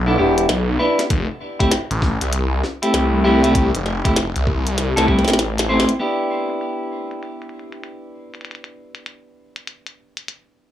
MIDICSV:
0, 0, Header, 1, 4, 480
1, 0, Start_track
1, 0, Key_signature, 1, "minor"
1, 0, Tempo, 612245
1, 865, Time_signature, 4, 2, 24, 8
1, 8401, End_track
2, 0, Start_track
2, 0, Title_t, "Clean electric guitar"
2, 0, Program_c, 0, 27
2, 52, Note_on_c, 0, 64, 65
2, 56, Note_on_c, 0, 59, 69
2, 59, Note_on_c, 0, 69, 74
2, 63, Note_on_c, 0, 62, 61
2, 130, Note_off_c, 0, 69, 0
2, 131, Note_off_c, 0, 59, 0
2, 131, Note_off_c, 0, 62, 0
2, 131, Note_off_c, 0, 64, 0
2, 141, Note_on_c, 0, 64, 78
2, 145, Note_on_c, 0, 59, 76
2, 148, Note_on_c, 0, 67, 84
2, 151, Note_on_c, 0, 62, 68
2, 357, Note_off_c, 0, 59, 0
2, 357, Note_off_c, 0, 62, 0
2, 357, Note_off_c, 0, 64, 0
2, 357, Note_off_c, 0, 67, 0
2, 621, Note_on_c, 0, 64, 79
2, 624, Note_on_c, 0, 71, 95
2, 629, Note_on_c, 0, 62, 76
2, 632, Note_on_c, 0, 59, 80
2, 781, Note_off_c, 0, 59, 0
2, 781, Note_off_c, 0, 62, 0
2, 781, Note_off_c, 0, 64, 0
2, 781, Note_off_c, 0, 71, 0
2, 1250, Note_on_c, 0, 64, 74
2, 1255, Note_on_c, 0, 67, 95
2, 1258, Note_on_c, 0, 60, 77
2, 1262, Note_on_c, 0, 57, 77
2, 1351, Note_off_c, 0, 57, 0
2, 1352, Note_off_c, 0, 60, 0
2, 1352, Note_off_c, 0, 64, 0
2, 1352, Note_off_c, 0, 67, 0
2, 2214, Note_on_c, 0, 64, 67
2, 2218, Note_on_c, 0, 67, 74
2, 2221, Note_on_c, 0, 60, 56
2, 2225, Note_on_c, 0, 57, 59
2, 2523, Note_off_c, 0, 57, 0
2, 2524, Note_off_c, 0, 60, 0
2, 2524, Note_off_c, 0, 64, 0
2, 2524, Note_off_c, 0, 67, 0
2, 2541, Note_on_c, 0, 64, 78
2, 2545, Note_on_c, 0, 67, 100
2, 2549, Note_on_c, 0, 60, 71
2, 2551, Note_on_c, 0, 57, 76
2, 2673, Note_off_c, 0, 57, 0
2, 2673, Note_off_c, 0, 67, 0
2, 2674, Note_off_c, 0, 60, 0
2, 2674, Note_off_c, 0, 64, 0
2, 2693, Note_on_c, 0, 64, 72
2, 2696, Note_on_c, 0, 67, 81
2, 2700, Note_on_c, 0, 60, 70
2, 2705, Note_on_c, 0, 57, 77
2, 2888, Note_off_c, 0, 60, 0
2, 2888, Note_off_c, 0, 67, 0
2, 2889, Note_off_c, 0, 57, 0
2, 2889, Note_off_c, 0, 64, 0
2, 3173, Note_on_c, 0, 64, 80
2, 3175, Note_on_c, 0, 67, 80
2, 3180, Note_on_c, 0, 60, 74
2, 3182, Note_on_c, 0, 57, 79
2, 3272, Note_off_c, 0, 57, 0
2, 3272, Note_off_c, 0, 64, 0
2, 3272, Note_off_c, 0, 67, 0
2, 3273, Note_off_c, 0, 60, 0
2, 3891, Note_on_c, 0, 69, 84
2, 3895, Note_on_c, 0, 64, 70
2, 3897, Note_on_c, 0, 60, 64
2, 3900, Note_on_c, 0, 57, 71
2, 3970, Note_off_c, 0, 57, 0
2, 3970, Note_off_c, 0, 60, 0
2, 3970, Note_off_c, 0, 64, 0
2, 3970, Note_off_c, 0, 69, 0
2, 3979, Note_on_c, 0, 64, 75
2, 3983, Note_on_c, 0, 67, 82
2, 3987, Note_on_c, 0, 60, 70
2, 3990, Note_on_c, 0, 57, 64
2, 4196, Note_off_c, 0, 57, 0
2, 4196, Note_off_c, 0, 60, 0
2, 4196, Note_off_c, 0, 64, 0
2, 4196, Note_off_c, 0, 67, 0
2, 4462, Note_on_c, 0, 72, 89
2, 4464, Note_on_c, 0, 64, 73
2, 4469, Note_on_c, 0, 60, 85
2, 4473, Note_on_c, 0, 57, 76
2, 4621, Note_off_c, 0, 57, 0
2, 4621, Note_off_c, 0, 60, 0
2, 4621, Note_off_c, 0, 64, 0
2, 4621, Note_off_c, 0, 72, 0
2, 4700, Note_on_c, 0, 59, 78
2, 4704, Note_on_c, 0, 62, 64
2, 4708, Note_on_c, 0, 67, 70
2, 4712, Note_on_c, 0, 64, 58
2, 8401, Note_off_c, 0, 59, 0
2, 8401, Note_off_c, 0, 62, 0
2, 8401, Note_off_c, 0, 64, 0
2, 8401, Note_off_c, 0, 67, 0
2, 8401, End_track
3, 0, Start_track
3, 0, Title_t, "Detuned saw bass"
3, 0, Program_c, 1, 39
3, 0, Note_on_c, 1, 35, 100
3, 130, Note_off_c, 1, 35, 0
3, 146, Note_on_c, 1, 28, 100
3, 371, Note_off_c, 1, 28, 0
3, 385, Note_on_c, 1, 35, 95
3, 611, Note_off_c, 1, 35, 0
3, 864, Note_on_c, 1, 29, 97
3, 992, Note_off_c, 1, 29, 0
3, 1496, Note_on_c, 1, 33, 97
3, 1712, Note_off_c, 1, 33, 0
3, 1735, Note_on_c, 1, 36, 101
3, 2050, Note_off_c, 1, 36, 0
3, 2302, Note_on_c, 1, 36, 98
3, 2529, Note_off_c, 1, 36, 0
3, 2544, Note_on_c, 1, 36, 96
3, 2912, Note_off_c, 1, 36, 0
3, 2936, Note_on_c, 1, 29, 96
3, 3152, Note_off_c, 1, 29, 0
3, 3176, Note_on_c, 1, 29, 99
3, 3392, Note_off_c, 1, 29, 0
3, 3418, Note_on_c, 1, 36, 100
3, 3873, Note_off_c, 1, 36, 0
3, 3898, Note_on_c, 1, 36, 96
3, 4113, Note_off_c, 1, 36, 0
3, 4137, Note_on_c, 1, 33, 96
3, 4592, Note_off_c, 1, 33, 0
3, 8401, End_track
4, 0, Start_track
4, 0, Title_t, "Drums"
4, 297, Note_on_c, 9, 42, 50
4, 375, Note_off_c, 9, 42, 0
4, 385, Note_on_c, 9, 38, 123
4, 385, Note_on_c, 9, 42, 65
4, 463, Note_off_c, 9, 38, 0
4, 463, Note_off_c, 9, 42, 0
4, 777, Note_on_c, 9, 40, 53
4, 777, Note_on_c, 9, 42, 51
4, 856, Note_off_c, 9, 40, 0
4, 856, Note_off_c, 9, 42, 0
4, 864, Note_on_c, 9, 42, 64
4, 865, Note_on_c, 9, 36, 104
4, 943, Note_off_c, 9, 42, 0
4, 944, Note_off_c, 9, 36, 0
4, 1257, Note_on_c, 9, 36, 94
4, 1257, Note_on_c, 9, 42, 49
4, 1335, Note_off_c, 9, 36, 0
4, 1336, Note_off_c, 9, 42, 0
4, 1344, Note_on_c, 9, 38, 107
4, 1344, Note_on_c, 9, 42, 62
4, 1423, Note_off_c, 9, 38, 0
4, 1423, Note_off_c, 9, 42, 0
4, 1496, Note_on_c, 9, 42, 35
4, 1575, Note_off_c, 9, 42, 0
4, 1584, Note_on_c, 9, 36, 94
4, 1585, Note_on_c, 9, 40, 40
4, 1663, Note_off_c, 9, 36, 0
4, 1664, Note_off_c, 9, 40, 0
4, 1736, Note_on_c, 9, 42, 50
4, 1814, Note_off_c, 9, 42, 0
4, 1824, Note_on_c, 9, 42, 64
4, 1902, Note_off_c, 9, 42, 0
4, 2066, Note_on_c, 9, 40, 39
4, 2144, Note_off_c, 9, 40, 0
4, 2217, Note_on_c, 9, 42, 53
4, 2296, Note_off_c, 9, 42, 0
4, 2304, Note_on_c, 9, 38, 118
4, 2304, Note_on_c, 9, 42, 66
4, 2383, Note_off_c, 9, 38, 0
4, 2383, Note_off_c, 9, 42, 0
4, 2697, Note_on_c, 9, 42, 52
4, 2775, Note_off_c, 9, 42, 0
4, 2783, Note_on_c, 9, 42, 65
4, 2784, Note_on_c, 9, 36, 108
4, 2862, Note_off_c, 9, 42, 0
4, 2863, Note_off_c, 9, 36, 0
4, 2937, Note_on_c, 9, 42, 37
4, 3016, Note_off_c, 9, 42, 0
4, 3025, Note_on_c, 9, 38, 36
4, 3103, Note_off_c, 9, 38, 0
4, 3176, Note_on_c, 9, 36, 97
4, 3177, Note_on_c, 9, 42, 52
4, 3254, Note_off_c, 9, 36, 0
4, 3255, Note_off_c, 9, 42, 0
4, 3265, Note_on_c, 9, 38, 112
4, 3265, Note_on_c, 9, 42, 66
4, 3343, Note_off_c, 9, 38, 0
4, 3343, Note_off_c, 9, 42, 0
4, 3417, Note_on_c, 9, 42, 37
4, 3495, Note_off_c, 9, 42, 0
4, 3505, Note_on_c, 9, 36, 93
4, 3583, Note_off_c, 9, 36, 0
4, 3659, Note_on_c, 9, 42, 55
4, 3737, Note_off_c, 9, 42, 0
4, 3746, Note_on_c, 9, 38, 68
4, 3746, Note_on_c, 9, 42, 67
4, 3824, Note_off_c, 9, 38, 0
4, 3824, Note_off_c, 9, 42, 0
4, 3898, Note_on_c, 9, 42, 38
4, 3905, Note_on_c, 9, 38, 77
4, 3976, Note_off_c, 9, 42, 0
4, 3984, Note_off_c, 9, 38, 0
4, 3985, Note_on_c, 9, 36, 62
4, 4063, Note_off_c, 9, 36, 0
4, 4066, Note_on_c, 9, 38, 36
4, 4113, Note_off_c, 9, 38, 0
4, 4113, Note_on_c, 9, 38, 44
4, 4137, Note_off_c, 9, 38, 0
4, 4137, Note_on_c, 9, 38, 52
4, 4137, Note_on_c, 9, 42, 56
4, 4145, Note_off_c, 9, 38, 0
4, 4145, Note_on_c, 9, 38, 63
4, 4153, Note_off_c, 9, 38, 0
4, 4153, Note_on_c, 9, 38, 60
4, 4182, Note_off_c, 9, 38, 0
4, 4182, Note_on_c, 9, 38, 74
4, 4216, Note_off_c, 9, 42, 0
4, 4226, Note_off_c, 9, 38, 0
4, 4226, Note_on_c, 9, 38, 91
4, 4226, Note_on_c, 9, 42, 70
4, 4304, Note_off_c, 9, 38, 0
4, 4304, Note_off_c, 9, 42, 0
4, 4377, Note_on_c, 9, 42, 37
4, 4384, Note_on_c, 9, 38, 96
4, 4455, Note_off_c, 9, 42, 0
4, 4463, Note_off_c, 9, 38, 0
4, 4545, Note_on_c, 9, 38, 104
4, 4616, Note_on_c, 9, 42, 56
4, 4623, Note_off_c, 9, 38, 0
4, 4695, Note_off_c, 9, 42, 0
4, 4703, Note_on_c, 9, 42, 63
4, 4703, Note_on_c, 9, 49, 77
4, 4782, Note_off_c, 9, 42, 0
4, 4782, Note_off_c, 9, 49, 0
4, 4855, Note_on_c, 9, 42, 38
4, 4934, Note_off_c, 9, 42, 0
4, 5094, Note_on_c, 9, 42, 51
4, 5173, Note_off_c, 9, 42, 0
4, 5184, Note_on_c, 9, 42, 64
4, 5262, Note_off_c, 9, 42, 0
4, 5576, Note_on_c, 9, 42, 52
4, 5655, Note_off_c, 9, 42, 0
4, 5666, Note_on_c, 9, 42, 63
4, 5744, Note_off_c, 9, 42, 0
4, 5816, Note_on_c, 9, 42, 34
4, 5875, Note_off_c, 9, 42, 0
4, 5875, Note_on_c, 9, 42, 28
4, 5953, Note_off_c, 9, 42, 0
4, 5954, Note_on_c, 9, 42, 23
4, 6033, Note_off_c, 9, 42, 0
4, 6056, Note_on_c, 9, 42, 53
4, 6134, Note_off_c, 9, 42, 0
4, 6143, Note_on_c, 9, 42, 66
4, 6221, Note_off_c, 9, 42, 0
4, 6536, Note_on_c, 9, 42, 24
4, 6544, Note_off_c, 9, 42, 0
4, 6544, Note_on_c, 9, 42, 28
4, 6593, Note_off_c, 9, 42, 0
4, 6593, Note_on_c, 9, 42, 33
4, 6622, Note_off_c, 9, 42, 0
4, 6622, Note_on_c, 9, 42, 62
4, 6673, Note_off_c, 9, 42, 0
4, 6673, Note_on_c, 9, 42, 41
4, 6703, Note_off_c, 9, 42, 0
4, 6703, Note_on_c, 9, 42, 43
4, 6775, Note_off_c, 9, 42, 0
4, 6775, Note_on_c, 9, 42, 38
4, 6853, Note_off_c, 9, 42, 0
4, 7015, Note_on_c, 9, 42, 51
4, 7093, Note_off_c, 9, 42, 0
4, 7105, Note_on_c, 9, 42, 66
4, 7183, Note_off_c, 9, 42, 0
4, 7496, Note_on_c, 9, 42, 54
4, 7574, Note_off_c, 9, 42, 0
4, 7585, Note_on_c, 9, 42, 66
4, 7663, Note_off_c, 9, 42, 0
4, 7734, Note_on_c, 9, 42, 37
4, 7813, Note_off_c, 9, 42, 0
4, 7973, Note_on_c, 9, 42, 51
4, 8052, Note_off_c, 9, 42, 0
4, 8062, Note_on_c, 9, 42, 68
4, 8140, Note_off_c, 9, 42, 0
4, 8401, End_track
0, 0, End_of_file